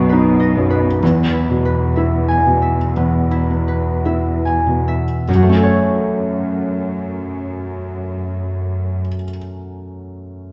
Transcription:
0.00 0.99 B1 soft
0.00 0.57 F#2 soft
0.00 1.02 B2 soft
0.00 1.05 B2 soft
0.00 1.05 F#3 soft
0.00 0.39 B3 soft
0.00 2.95 B3 soft
0.00 0.13 D#4 soft
0.00 1.05 F#4 soft
0.00 0.39 D#5 soft
0.09 0.84 D#4 soft
0.09 0.69 B4 soft
0.40 1.05 D#5 soft
0.57 1.02 F#2 soft
0.70 1.64 B4 soft
1.02 4.95 E2 soft
1.02 2.92 E2 soft
1.02 4.92 E3 soft
1.33 3.30 E4 soft
1.50 2.26 B2 soft
1.65 3.67 B4 soft
1.96 2.76 E4 soft
1.96 2.61 E5 soft
2.28 4.44 G#5 soft
2.46 3.28 B2 soft
2.62 4.04 E5 soft
2.97 5.24 E2 soft
2.97 5.33 B3 soft
3.31 5.32 E4 soft
3.50 4.41 B3 soft
3.68 5.33 B4 soft
4.05 5.04 E4 soft
4.05 4.87 E5 soft
4.45 5.32 G#5 soft
4.67 5.28 B2 soft
4.88 5.33 E5 soft
5.26 8.99 F#2 soft
5.26 9.18 F#2 soft
5.26 9.01 F#2 soft
5.35 9.08 F#3 soft
5.42 9.15 A3 soft
5.49 9.22 C#4 soft
5.56 9.29 F#4 soft
5.56 9.29 A4 soft
5.63 9.35 C#5 soft
5.63 9.36 C#5 soft

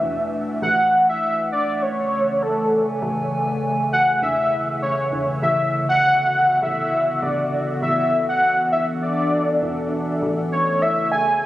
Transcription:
0.00 0.57 E1 medium
0.00 5.42 E3 medium
0.00 5.42 A3 medium
0.00 0.62 D4 medium
0.00 2.56 F#4 medium
0.00 1.76 B4 medium
0.00 0.28 E5 medium
0.62 2.97 A1 loud
0.62 1.06 F#5 loud
1.09 1.49 E5 loud
1.52 1.84 D5 loud
1.78 7.82 C#3 medium
1.82 2.44 C#5 loud
1.97 11.46 A4 medium
2.42 2.89 A4 medium
2.42 5.42 G#5 medium
3.02 4.17 A1 loud
3.93 4.20 F#5 loud
4.22 5.07 E1 medium
4.22 4.78 E5 loud
4.82 5.26 C#5 medium
5.12 5.36 E1 medium
5.42 6.57 A1 loud
5.42 7.82 D3 loud
5.42 5.86 E5 loud
5.70 11.46 B3 medium
5.82 11.46 F#4 medium
5.89 6.58 F#5 loud
6.62 7.17 A1 loud
6.62 7.24 E5 loud
7.22 7.77 A1 medium
7.22 7.69 D5 medium
7.82 8.97 A1 medium
7.82 11.46 E3 medium
7.82 8.26 E5 loud
8.29 8.69 F#5 loud
8.59 10.22 D4 medium
8.72 8.86 E5 medium
9.02 9.88 D5 medium
9.62 10.17 E1 medium
10.22 11.46 A1 loud
10.30 11.46 A3 loud
10.52 10.83 C#5 medium
10.71 11.46 C#3 medium
10.82 11.11 E5 loud
11.12 11.46 G#5 loud
11.24 11.46 G#4 medium

